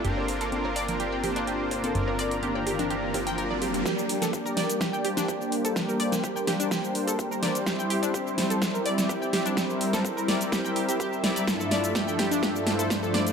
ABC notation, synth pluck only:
X:1
M:4/4
L:1/16
Q:1/4=126
K:Gdor
V:1 name="Synth pluck"
G z2 A z B d z G g G D G z2 A | z B d z G g G D G z G g B d G z | G z2 A z B d z G g G D G z2 A | z B d z G g G D G z2 A z B d z |
G g G D G z2 A z B d z G g G D | G z2 A z B d z G g G G G z d d | z A d z G g G D G z2 A z A d z |]